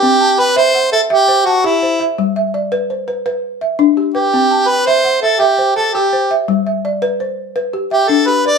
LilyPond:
<<
  \new Staff \with { instrumentName = "Balafon" } { \time 12/8 \key c \lydian \tempo 4. = 112 << { <g' b'>8 a''8 g''4 fis''8 e''4 c''8 a''4 c''8 e''8~ | e''8 e''8 d''4 c''8 b'4. e''4 g'8 b'8~ | b'8 a''8 g''4 fis''8 e''4 c''8 a''4 c''8 e''8~ | e''8 e''8 d''4 c''4. g'8 e''4 g'8 b'8 | } \\ { c'4 r8 e''4 r8 e''4 r8 g'4 r8 | g4 r8 b'4 r8 b'4 r8 d'4 r8 | c'4 r8 e''4 r8 e''4 r8 g'4 r8 | g4 r8 b'4 r8 b'4 r8 d'4 r8 | } >> }
  \new Staff \with { instrumentName = "Harmonica" } { \time 12/8 \key c \lydian g'4 b'8 c''4 a'8 g'4 fis'8 e'4 r8 | r1 r4. g'8~ | g'4 b'8 c''4 a'8 g'4 a'8 g'4 r8 | r1 g'8 a'8 b'8 d''8 | }
>>